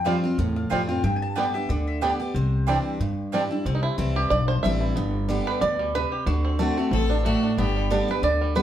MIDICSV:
0, 0, Header, 1, 7, 480
1, 0, Start_track
1, 0, Key_signature, 0, "major"
1, 0, Tempo, 326797
1, 1526, Time_signature, 4, 2, 24, 8
1, 12665, End_track
2, 0, Start_track
2, 0, Title_t, "Mandolin"
2, 0, Program_c, 0, 25
2, 86, Note_on_c, 0, 77, 85
2, 775, Note_off_c, 0, 77, 0
2, 828, Note_on_c, 0, 77, 92
2, 1031, Note_off_c, 0, 77, 0
2, 1045, Note_on_c, 0, 79, 90
2, 1119, Note_off_c, 0, 79, 0
2, 1299, Note_on_c, 0, 79, 88
2, 1507, Note_off_c, 0, 79, 0
2, 1523, Note_on_c, 0, 79, 98
2, 1701, Note_off_c, 0, 79, 0
2, 1707, Note_on_c, 0, 80, 70
2, 1780, Note_off_c, 0, 80, 0
2, 1796, Note_on_c, 0, 81, 95
2, 2006, Note_off_c, 0, 81, 0
2, 2012, Note_on_c, 0, 79, 89
2, 2252, Note_off_c, 0, 79, 0
2, 2260, Note_on_c, 0, 76, 92
2, 2483, Note_on_c, 0, 74, 86
2, 2489, Note_off_c, 0, 76, 0
2, 2727, Note_off_c, 0, 74, 0
2, 2754, Note_on_c, 0, 76, 81
2, 2970, Note_on_c, 0, 74, 87
2, 2976, Note_off_c, 0, 76, 0
2, 3440, Note_off_c, 0, 74, 0
2, 3446, Note_on_c, 0, 72, 79
2, 4828, Note_off_c, 0, 72, 0
2, 12665, End_track
3, 0, Start_track
3, 0, Title_t, "Mandolin"
3, 0, Program_c, 1, 25
3, 70, Note_on_c, 1, 57, 88
3, 76, Note_on_c, 1, 65, 87
3, 82, Note_on_c, 1, 72, 97
3, 83, Note_on_c, 1, 79, 96
3, 222, Note_off_c, 1, 57, 0
3, 225, Note_off_c, 1, 65, 0
3, 228, Note_off_c, 1, 72, 0
3, 229, Note_off_c, 1, 79, 0
3, 1024, Note_on_c, 1, 57, 85
3, 1029, Note_on_c, 1, 65, 96
3, 1033, Note_on_c, 1, 72, 92
3, 1038, Note_on_c, 1, 79, 109
3, 1179, Note_off_c, 1, 57, 0
3, 1182, Note_off_c, 1, 65, 0
3, 1184, Note_off_c, 1, 72, 0
3, 1186, Note_off_c, 1, 79, 0
3, 1990, Note_on_c, 1, 59, 100
3, 1996, Note_on_c, 1, 67, 93
3, 2002, Note_on_c, 1, 74, 92
3, 2002, Note_on_c, 1, 79, 99
3, 2142, Note_off_c, 1, 59, 0
3, 2145, Note_off_c, 1, 67, 0
3, 2148, Note_off_c, 1, 74, 0
3, 2148, Note_off_c, 1, 79, 0
3, 2957, Note_on_c, 1, 59, 85
3, 2962, Note_on_c, 1, 67, 98
3, 2965, Note_on_c, 1, 74, 91
3, 2969, Note_on_c, 1, 79, 103
3, 3105, Note_off_c, 1, 59, 0
3, 3108, Note_off_c, 1, 67, 0
3, 3110, Note_off_c, 1, 74, 0
3, 3112, Note_off_c, 1, 79, 0
3, 3916, Note_on_c, 1, 60, 90
3, 3924, Note_on_c, 1, 64, 93
3, 3928, Note_on_c, 1, 74, 95
3, 3930, Note_on_c, 1, 79, 106
3, 4065, Note_off_c, 1, 60, 0
3, 4069, Note_off_c, 1, 64, 0
3, 4071, Note_off_c, 1, 74, 0
3, 4072, Note_off_c, 1, 79, 0
3, 4879, Note_on_c, 1, 60, 89
3, 4886, Note_on_c, 1, 64, 89
3, 4888, Note_on_c, 1, 74, 93
3, 4892, Note_on_c, 1, 79, 95
3, 5027, Note_off_c, 1, 60, 0
3, 5030, Note_off_c, 1, 64, 0
3, 5032, Note_off_c, 1, 74, 0
3, 5034, Note_off_c, 1, 79, 0
3, 12665, End_track
4, 0, Start_track
4, 0, Title_t, "Fiddle"
4, 0, Program_c, 2, 110
4, 10172, Note_on_c, 2, 69, 112
4, 10616, Note_off_c, 2, 69, 0
4, 10648, Note_on_c, 2, 66, 93
4, 11095, Note_off_c, 2, 66, 0
4, 11125, Note_on_c, 2, 67, 93
4, 11694, Note_off_c, 2, 67, 0
4, 12665, End_track
5, 0, Start_track
5, 0, Title_t, "Five-string banjo"
5, 0, Program_c, 3, 105
5, 86, Note_on_c, 3, 55, 67
5, 95, Note_on_c, 3, 60, 64
5, 101, Note_on_c, 3, 65, 67
5, 201, Note_off_c, 3, 55, 0
5, 206, Note_off_c, 3, 60, 0
5, 209, Note_off_c, 3, 65, 0
5, 1052, Note_on_c, 3, 55, 68
5, 1063, Note_on_c, 3, 60, 69
5, 1065, Note_on_c, 3, 65, 65
5, 1166, Note_off_c, 3, 55, 0
5, 1168, Note_off_c, 3, 60, 0
5, 1171, Note_off_c, 3, 65, 0
5, 2021, Note_on_c, 3, 55, 66
5, 2030, Note_on_c, 3, 59, 66
5, 2033, Note_on_c, 3, 62, 66
5, 2130, Note_off_c, 3, 55, 0
5, 2132, Note_off_c, 3, 59, 0
5, 2132, Note_off_c, 3, 62, 0
5, 2969, Note_on_c, 3, 55, 62
5, 2978, Note_on_c, 3, 59, 64
5, 2980, Note_on_c, 3, 62, 63
5, 3083, Note_off_c, 3, 55, 0
5, 3086, Note_off_c, 3, 59, 0
5, 3088, Note_off_c, 3, 62, 0
5, 3938, Note_on_c, 3, 55, 64
5, 3944, Note_on_c, 3, 60, 61
5, 3951, Note_on_c, 3, 62, 62
5, 4047, Note_off_c, 3, 55, 0
5, 4051, Note_off_c, 3, 60, 0
5, 4052, Note_off_c, 3, 62, 0
5, 4900, Note_on_c, 3, 55, 64
5, 4905, Note_on_c, 3, 60, 62
5, 4912, Note_on_c, 3, 62, 62
5, 5008, Note_off_c, 3, 55, 0
5, 5011, Note_off_c, 3, 60, 0
5, 5013, Note_off_c, 3, 62, 0
5, 5373, Note_on_c, 3, 60, 61
5, 5504, Note_on_c, 3, 63, 66
5, 5616, Note_off_c, 3, 63, 0
5, 5622, Note_on_c, 3, 64, 89
5, 5831, Note_off_c, 3, 64, 0
5, 5848, Note_on_c, 3, 64, 60
5, 6059, Note_off_c, 3, 60, 0
5, 6113, Note_on_c, 3, 67, 86
5, 6321, Note_on_c, 3, 74, 98
5, 6336, Note_off_c, 3, 67, 0
5, 6536, Note_off_c, 3, 64, 0
5, 6574, Note_off_c, 3, 74, 0
5, 6579, Note_on_c, 3, 72, 96
5, 6798, Note_on_c, 3, 76, 95
5, 6810, Note_off_c, 3, 72, 0
5, 7056, Note_off_c, 3, 76, 0
5, 7062, Note_on_c, 3, 64, 56
5, 7282, Note_on_c, 3, 59, 61
5, 7284, Note_off_c, 3, 64, 0
5, 7763, Note_on_c, 3, 55, 57
5, 7973, Note_off_c, 3, 59, 0
5, 8037, Note_on_c, 3, 71, 105
5, 8239, Note_off_c, 3, 71, 0
5, 8245, Note_on_c, 3, 74, 100
5, 8454, Note_off_c, 3, 55, 0
5, 8510, Note_on_c, 3, 55, 60
5, 8734, Note_off_c, 3, 74, 0
5, 8740, Note_on_c, 3, 71, 99
5, 8988, Note_on_c, 3, 67, 62
5, 9164, Note_off_c, 3, 55, 0
5, 9202, Note_on_c, 3, 66, 87
5, 9207, Note_off_c, 3, 67, 0
5, 9228, Note_off_c, 3, 71, 0
5, 9467, Note_on_c, 3, 60, 55
5, 9682, Note_on_c, 3, 69, 82
5, 9699, Note_off_c, 3, 66, 0
5, 9948, Note_on_c, 3, 57, 69
5, 10123, Note_off_c, 3, 60, 0
5, 10131, Note_off_c, 3, 69, 0
5, 10155, Note_on_c, 3, 60, 58
5, 10424, Note_on_c, 3, 62, 62
5, 10604, Note_off_c, 3, 57, 0
5, 10650, Note_on_c, 3, 57, 73
5, 10850, Note_off_c, 3, 60, 0
5, 10911, Note_off_c, 3, 62, 0
5, 10917, Note_on_c, 3, 62, 58
5, 11129, Note_off_c, 3, 57, 0
5, 11139, Note_on_c, 3, 59, 63
5, 11399, Note_on_c, 3, 55, 54
5, 11618, Note_off_c, 3, 62, 0
5, 11624, Note_on_c, 3, 62, 62
5, 11903, Note_off_c, 3, 62, 0
5, 11909, Note_on_c, 3, 71, 98
5, 12050, Note_off_c, 3, 55, 0
5, 12095, Note_off_c, 3, 71, 0
5, 12100, Note_on_c, 3, 74, 101
5, 12359, Note_on_c, 3, 55, 59
5, 12566, Note_off_c, 3, 74, 0
5, 12572, Note_on_c, 3, 71, 99
5, 12665, Note_off_c, 3, 55, 0
5, 12665, Note_off_c, 3, 59, 0
5, 12665, Note_off_c, 3, 71, 0
5, 12665, End_track
6, 0, Start_track
6, 0, Title_t, "Steel-string acoustic guitar"
6, 0, Program_c, 4, 25
6, 0, Note_on_c, 4, 41, 83
6, 83, Note_on_c, 4, 53, 61
6, 92, Note_on_c, 4, 55, 66
6, 97, Note_on_c, 4, 60, 62
6, 108, Note_on_c, 4, 65, 62
6, 328, Note_off_c, 4, 65, 0
6, 335, Note_off_c, 4, 53, 0
6, 340, Note_off_c, 4, 55, 0
6, 342, Note_off_c, 4, 60, 0
6, 346, Note_on_c, 4, 65, 66
6, 367, Note_on_c, 4, 60, 55
6, 519, Note_off_c, 4, 41, 0
6, 557, Note_off_c, 4, 65, 0
6, 568, Note_off_c, 4, 60, 0
6, 568, Note_on_c, 4, 45, 89
6, 1041, Note_on_c, 4, 53, 60
6, 1050, Note_on_c, 4, 55, 60
6, 1057, Note_on_c, 4, 60, 69
6, 1059, Note_on_c, 4, 65, 69
6, 1284, Note_off_c, 4, 65, 0
6, 1294, Note_off_c, 4, 53, 0
6, 1299, Note_off_c, 4, 55, 0
6, 1302, Note_off_c, 4, 60, 0
6, 1302, Note_on_c, 4, 65, 60
6, 1328, Note_on_c, 4, 60, 49
6, 1483, Note_off_c, 4, 45, 0
6, 1515, Note_off_c, 4, 65, 0
6, 1525, Note_on_c, 4, 43, 85
6, 1528, Note_off_c, 4, 60, 0
6, 2010, Note_on_c, 4, 50, 60
6, 2019, Note_on_c, 4, 55, 59
6, 2024, Note_on_c, 4, 59, 62
6, 2028, Note_on_c, 4, 67, 66
6, 2258, Note_off_c, 4, 67, 0
6, 2259, Note_off_c, 4, 50, 0
6, 2263, Note_off_c, 4, 55, 0
6, 2265, Note_off_c, 4, 59, 0
6, 2276, Note_on_c, 4, 67, 65
6, 2294, Note_on_c, 4, 59, 49
6, 2442, Note_off_c, 4, 43, 0
6, 2482, Note_off_c, 4, 67, 0
6, 2491, Note_off_c, 4, 59, 0
6, 2495, Note_on_c, 4, 50, 87
6, 2949, Note_off_c, 4, 50, 0
6, 2967, Note_on_c, 4, 50, 61
6, 2977, Note_on_c, 4, 55, 58
6, 2979, Note_on_c, 4, 59, 69
6, 2983, Note_on_c, 4, 67, 68
6, 3209, Note_off_c, 4, 67, 0
6, 3217, Note_off_c, 4, 50, 0
6, 3222, Note_off_c, 4, 55, 0
6, 3223, Note_off_c, 4, 59, 0
6, 3226, Note_on_c, 4, 67, 58
6, 3253, Note_on_c, 4, 59, 50
6, 3437, Note_off_c, 4, 67, 0
6, 3451, Note_off_c, 4, 59, 0
6, 3463, Note_on_c, 4, 48, 85
6, 3937, Note_on_c, 4, 52, 63
6, 3947, Note_on_c, 4, 55, 57
6, 3949, Note_on_c, 4, 62, 59
6, 3958, Note_on_c, 4, 64, 62
6, 4371, Note_off_c, 4, 48, 0
6, 4390, Note_off_c, 4, 52, 0
6, 4395, Note_off_c, 4, 55, 0
6, 4396, Note_off_c, 4, 62, 0
6, 4401, Note_off_c, 4, 64, 0
6, 4414, Note_on_c, 4, 43, 87
6, 4891, Note_on_c, 4, 52, 54
6, 4903, Note_on_c, 4, 62, 62
6, 4904, Note_on_c, 4, 55, 60
6, 4915, Note_on_c, 4, 64, 65
6, 5133, Note_off_c, 4, 64, 0
6, 5139, Note_off_c, 4, 52, 0
6, 5145, Note_off_c, 4, 62, 0
6, 5146, Note_off_c, 4, 55, 0
6, 5151, Note_on_c, 4, 64, 57
6, 5172, Note_on_c, 4, 62, 51
6, 5327, Note_off_c, 4, 43, 0
6, 5360, Note_off_c, 4, 64, 0
6, 5370, Note_off_c, 4, 62, 0
6, 5379, Note_on_c, 4, 48, 86
6, 5843, Note_on_c, 4, 52, 78
6, 5850, Note_on_c, 4, 55, 90
6, 5853, Note_on_c, 4, 60, 96
6, 5861, Note_on_c, 4, 64, 91
6, 6289, Note_off_c, 4, 48, 0
6, 6303, Note_off_c, 4, 52, 0
6, 6307, Note_off_c, 4, 55, 0
6, 6308, Note_off_c, 4, 60, 0
6, 6312, Note_off_c, 4, 64, 0
6, 6334, Note_on_c, 4, 43, 81
6, 6816, Note_on_c, 4, 52, 84
6, 6821, Note_on_c, 4, 55, 85
6, 6831, Note_on_c, 4, 60, 84
6, 6838, Note_on_c, 4, 64, 105
6, 7247, Note_off_c, 4, 43, 0
6, 7270, Note_off_c, 4, 52, 0
6, 7272, Note_off_c, 4, 55, 0
6, 7277, Note_off_c, 4, 60, 0
6, 7281, Note_off_c, 4, 64, 0
6, 7295, Note_on_c, 4, 43, 86
6, 7764, Note_on_c, 4, 50, 87
6, 7779, Note_on_c, 4, 55, 87
6, 7782, Note_on_c, 4, 59, 88
6, 7788, Note_on_c, 4, 67, 101
6, 8207, Note_off_c, 4, 43, 0
6, 8224, Note_off_c, 4, 50, 0
6, 8231, Note_off_c, 4, 55, 0
6, 8233, Note_off_c, 4, 59, 0
6, 8236, Note_off_c, 4, 67, 0
6, 8252, Note_on_c, 4, 47, 88
6, 8707, Note_off_c, 4, 47, 0
6, 8741, Note_on_c, 4, 48, 88
6, 9192, Note_off_c, 4, 48, 0
6, 9207, Note_on_c, 4, 50, 88
6, 9660, Note_off_c, 4, 50, 0
6, 9677, Note_on_c, 4, 50, 84
6, 9684, Note_on_c, 4, 57, 84
6, 9691, Note_on_c, 4, 60, 96
6, 9700, Note_on_c, 4, 66, 87
6, 9933, Note_off_c, 4, 50, 0
6, 9936, Note_off_c, 4, 57, 0
6, 9937, Note_off_c, 4, 66, 0
6, 9940, Note_off_c, 4, 60, 0
6, 9955, Note_on_c, 4, 66, 61
6, 9975, Note_on_c, 4, 60, 52
6, 10162, Note_off_c, 4, 66, 0
6, 10172, Note_off_c, 4, 60, 0
6, 10179, Note_on_c, 4, 59, 84
6, 10631, Note_off_c, 4, 59, 0
6, 10661, Note_on_c, 4, 45, 85
6, 11113, Note_off_c, 4, 45, 0
6, 11139, Note_on_c, 4, 43, 84
6, 11610, Note_on_c, 4, 50, 93
6, 11617, Note_on_c, 4, 55, 88
6, 11622, Note_on_c, 4, 59, 84
6, 11630, Note_on_c, 4, 67, 101
6, 11853, Note_off_c, 4, 67, 0
6, 11860, Note_off_c, 4, 50, 0
6, 11863, Note_off_c, 4, 55, 0
6, 11866, Note_off_c, 4, 59, 0
6, 11870, Note_on_c, 4, 67, 62
6, 11891, Note_on_c, 4, 59, 50
6, 12050, Note_off_c, 4, 43, 0
6, 12080, Note_off_c, 4, 67, 0
6, 12088, Note_on_c, 4, 50, 87
6, 12091, Note_off_c, 4, 59, 0
6, 12545, Note_off_c, 4, 50, 0
6, 12562, Note_on_c, 4, 50, 77
6, 12571, Note_on_c, 4, 55, 95
6, 12581, Note_on_c, 4, 59, 92
6, 12585, Note_on_c, 4, 67, 85
6, 12665, Note_off_c, 4, 50, 0
6, 12665, Note_off_c, 4, 55, 0
6, 12665, Note_off_c, 4, 59, 0
6, 12665, Note_off_c, 4, 67, 0
6, 12665, End_track
7, 0, Start_track
7, 0, Title_t, "Upright bass"
7, 0, Program_c, 5, 32
7, 0, Note_on_c, 5, 41, 86
7, 221, Note_off_c, 5, 41, 0
7, 558, Note_on_c, 5, 40, 91
7, 970, Note_off_c, 5, 40, 0
7, 1041, Note_on_c, 5, 41, 80
7, 1451, Note_off_c, 5, 41, 0
7, 1517, Note_on_c, 5, 43, 92
7, 2137, Note_off_c, 5, 43, 0
7, 2480, Note_on_c, 5, 38, 84
7, 3100, Note_off_c, 5, 38, 0
7, 3444, Note_on_c, 5, 36, 89
7, 4062, Note_off_c, 5, 36, 0
7, 4404, Note_on_c, 5, 43, 85
7, 5022, Note_off_c, 5, 43, 0
7, 5367, Note_on_c, 5, 36, 89
7, 5676, Note_off_c, 5, 36, 0
7, 5847, Note_on_c, 5, 36, 85
7, 6255, Note_off_c, 5, 36, 0
7, 6323, Note_on_c, 5, 35, 93
7, 6732, Note_off_c, 5, 35, 0
7, 6800, Note_on_c, 5, 33, 80
7, 7211, Note_off_c, 5, 33, 0
7, 7286, Note_on_c, 5, 31, 89
7, 7904, Note_off_c, 5, 31, 0
7, 8243, Note_on_c, 5, 38, 86
7, 8862, Note_off_c, 5, 38, 0
7, 9198, Note_on_c, 5, 38, 85
7, 9818, Note_off_c, 5, 38, 0
7, 10152, Note_on_c, 5, 33, 90
7, 10775, Note_off_c, 5, 33, 0
7, 11127, Note_on_c, 5, 31, 91
7, 11745, Note_off_c, 5, 31, 0
7, 12077, Note_on_c, 5, 38, 84
7, 12665, Note_off_c, 5, 38, 0
7, 12665, End_track
0, 0, End_of_file